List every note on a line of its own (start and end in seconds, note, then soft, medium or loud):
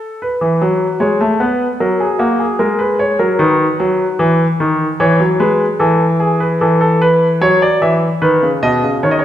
0.00 0.20 A4 medium
0.22 0.99 B4 medium
0.41 0.61 E3 medium
0.62 0.86 F#3 medium
1.00 1.20 G#3 medium
1.00 1.25 C#5 medium
1.21 1.40 A3 medium
1.40 1.65 B3 medium
1.40 1.65 B4 medium
1.80 2.05 F#3 medium
1.80 2.00 A#4 medium
2.00 2.20 G#4 medium
2.19 2.44 A#3 medium
2.19 2.39 F#4 medium
2.40 2.59 G#4 medium
2.59 3.18 G#3 medium
2.59 2.79 A#4 medium
2.79 2.99 B4 medium
2.99 3.19 C#5 medium
3.19 3.39 F#3 medium
3.19 3.39 A#4 medium
3.39 3.64 D#3 medium
3.39 4.96 B4 medium
3.80 4.05 F#3 medium
4.19 4.44 E3 medium
4.60 4.85 D#3 medium
5.00 5.19 E3 medium
5.00 5.25 C#5 medium
5.20 5.39 F#3 medium
5.40 5.65 G#3 medium
5.40 5.65 B4 medium
5.79 6.58 E3 medium
5.79 6.05 A4 medium
6.20 6.40 G#4 medium
6.40 6.60 B4 medium
6.61 7.39 E3 medium
6.61 6.79 A4 medium
6.81 7.00 A4 medium
7.02 7.26 B4 medium
7.41 7.66 F#3 medium
7.41 7.61 C#5 loud
7.62 7.81 D5 medium
7.82 8.07 E3 medium
7.82 8.07 E5 medium
8.22 8.42 D#3 medium
8.22 8.47 B4 medium
8.42 8.62 C#3 medium
8.63 8.82 B2 medium
8.63 8.88 D#5 loud
8.84 9.03 C#3 medium
9.03 9.23 D#3 medium
9.03 9.11 C#5 medium
9.11 9.20 D#5 medium
9.19 9.25 C#5 medium